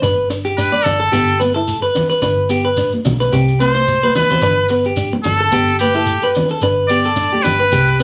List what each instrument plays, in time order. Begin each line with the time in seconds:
0.02 fingered electric bass G1, clean electric guitar D4 B4, shekere
0.30 clean electric guitar D4, muted clean electric guitar stroke, shekere
0.45 clean electric guitar G4, shekere
0.57 clean electric guitar D4, muted trumpet B4, shekere
0.72 clean electric guitar D5, high conga
0.84 fingered electric bass G1, clean electric guitar D4, muted trumpet A4, low conga, shekere
1.00 clean electric guitar A4
1.12 fingered electric bass G1, clean electric guitar B3 G4, shekere
1.28 shekere
1.40 clean electric guitar B3 B4, high conga, shekere
1.54 clean electric guitar E4 A4, shekere
1.68 shekere
1.82 clean electric guitar B4, shekere
1.95 clean electric guitar D4, low conga, shekere
2.10 clean electric guitar B4, shekere
2.22 fingered electric bass G1, clean electric guitar D4 B4, shekere
2.49 clean electric guitar B3 G4, shekere
2.65 clean electric guitar B4
2.77 clean electric guitar D4, shekere
2.92 high conga, shekere
3.05 fingered electric bass B1, clean electric guitar D4, low conga, shekere
3.20 clean electric guitar B4, shekere
3.32 fingered electric bass C2, clean electric guitar C4 G4, shekere
3.48 shekere
3.60 clean electric guitar C4 B4, muted trumpet C5, high conga, shekere
3.75 clean electric guitar C5, muted clean electric guitar stroke, high conga, shekere
3.87 high conga, shekere
4.03 clean electric guitar B4, high conga
4.15 clean electric guitar D4, muted trumpet B4, low conga, shekere
4.30 clean electric guitar C5, low conga, shekere
4.41 fingered electric bass G1, clean electric guitar D4 B4, shekere
4.69 clean electric guitar B3 B4, shekere
4.84 clean electric guitar G4, shekere
4.96 clean electric guitar D4, shekere
5.13 muted clean electric guitar stroke, high conga
5.24 fingered electric bass G1, clean electric guitar D4, muted trumpet A4, low conga, shekere
5.40 clean electric guitar A4
5.52 fingered electric bass G1, clean electric guitar B3 G4, shekere
5.67 shekere
5.79 muted trumpet G4, clean electric guitar B4, high conga, shekere
5.94 clean electric guitar E4 A4, shekere
6.06 shekere
6.22 clean electric guitar B4, shekere
6.35 clean electric guitar D4, low conga, shekere
6.49 clean electric guitar A4, shekere
6.61 fingered electric bass G1, clean electric guitar D4 B4, shekere
6.89 clean electric guitar B3 G4, muted trumpet D5, shekere
7.04 clean electric guitar A4, shekere
7.16 clean electric guitar D4, shekere
7.33 clean electric guitar G4, high conga
7.43 fingered electric bass G1, clean electric guitar D4, muted trumpet B4, low conga, shekere
7.60 clean electric guitar B4
7.72 fingered electric bass C2, clean electric guitar G4, muted clean electric guitar stroke, shekere
7.87 shekere
8.00 clean electric guitar C4, shekere